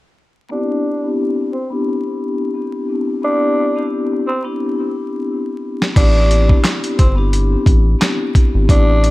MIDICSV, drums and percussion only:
0, 0, Header, 1, 2, 480
1, 0, Start_track
1, 0, Tempo, 681818
1, 358, Time_signature, 4, 2, 24, 8
1, 6411, End_track
2, 0, Start_track
2, 0, Title_t, "Drums"
2, 4097, Note_on_c, 9, 38, 86
2, 4167, Note_off_c, 9, 38, 0
2, 4197, Note_on_c, 9, 36, 115
2, 4197, Note_on_c, 9, 49, 89
2, 4201, Note_on_c, 9, 42, 92
2, 4268, Note_off_c, 9, 36, 0
2, 4268, Note_off_c, 9, 49, 0
2, 4272, Note_off_c, 9, 42, 0
2, 4441, Note_on_c, 9, 42, 72
2, 4512, Note_off_c, 9, 42, 0
2, 4572, Note_on_c, 9, 36, 92
2, 4642, Note_off_c, 9, 36, 0
2, 4675, Note_on_c, 9, 39, 98
2, 4678, Note_on_c, 9, 38, 120
2, 4681, Note_on_c, 9, 42, 89
2, 4746, Note_off_c, 9, 39, 0
2, 4749, Note_off_c, 9, 38, 0
2, 4751, Note_off_c, 9, 42, 0
2, 4813, Note_on_c, 9, 42, 61
2, 4884, Note_off_c, 9, 42, 0
2, 4920, Note_on_c, 9, 42, 73
2, 4921, Note_on_c, 9, 36, 95
2, 4990, Note_off_c, 9, 42, 0
2, 4991, Note_off_c, 9, 36, 0
2, 5161, Note_on_c, 9, 42, 86
2, 5231, Note_off_c, 9, 42, 0
2, 5394, Note_on_c, 9, 36, 97
2, 5401, Note_on_c, 9, 42, 62
2, 5465, Note_off_c, 9, 36, 0
2, 5471, Note_off_c, 9, 42, 0
2, 5640, Note_on_c, 9, 42, 96
2, 5642, Note_on_c, 9, 39, 86
2, 5645, Note_on_c, 9, 38, 110
2, 5710, Note_off_c, 9, 42, 0
2, 5713, Note_off_c, 9, 39, 0
2, 5716, Note_off_c, 9, 38, 0
2, 5878, Note_on_c, 9, 36, 99
2, 5881, Note_on_c, 9, 42, 73
2, 5949, Note_off_c, 9, 36, 0
2, 5951, Note_off_c, 9, 42, 0
2, 6117, Note_on_c, 9, 36, 112
2, 6122, Note_on_c, 9, 42, 92
2, 6188, Note_off_c, 9, 36, 0
2, 6192, Note_off_c, 9, 42, 0
2, 6362, Note_on_c, 9, 42, 68
2, 6411, Note_off_c, 9, 42, 0
2, 6411, End_track
0, 0, End_of_file